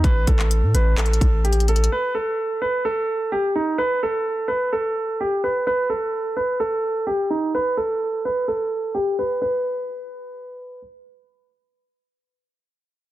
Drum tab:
HH |x-----x-----x-----x-----x-x-x-x-----x-x-x-x-x-x-|------------------------------------------------|------------------------------------------------|------------------------------------------------|
CP |---------x--------------x-----------------------|------------------------------------------------|------------------------------------------------|------------------------------------------------|
BD |o-----o-----------------------o-----------------|------------------------------------------------|------------------------------------------------|------------------------------------------------|

HH |------------------------------------------------|------------------------------------------------|------------------------------------------------|
CP |------------------------------------------------|------------------------------------------------|------------------------------------------------|
BD |------------------------------------------------|------------------------------------------------|------------------------------------------------|